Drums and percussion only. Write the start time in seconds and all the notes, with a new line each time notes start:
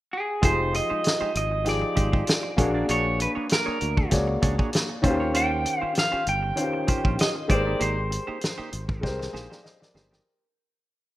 0.43 kick, closed hi-hat
0.74 closed hi-hat
1.04 snare, closed hi-hat
1.35 closed hi-hat
1.66 snare, closed hi-hat
1.96 kick, closed hi-hat
2.13 kick
2.27 snare, closed hi-hat
2.58 kick, closed hi-hat
2.89 closed hi-hat
3.20 closed hi-hat
3.49 snare, closed hi-hat
3.81 closed hi-hat
3.97 kick
4.11 kick, snare, closed hi-hat
4.42 kick, closed hi-hat
4.59 kick
4.73 snare, closed hi-hat
5.04 kick, closed hi-hat
5.34 closed hi-hat
5.66 closed hi-hat
5.95 snare, closed hi-hat
6.27 closed hi-hat
6.57 closed hi-hat
6.88 kick, closed hi-hat
7.05 kick
7.19 snare, closed hi-hat
7.50 kick, closed hi-hat
7.80 closed hi-hat
8.12 closed hi-hat
8.41 snare, closed hi-hat
8.73 closed hi-hat
8.89 kick
9.03 kick, snare
9.21 snare
9.35 snare
9.52 snare
9.66 snare
9.82 snare
9.96 snare
10.13 snare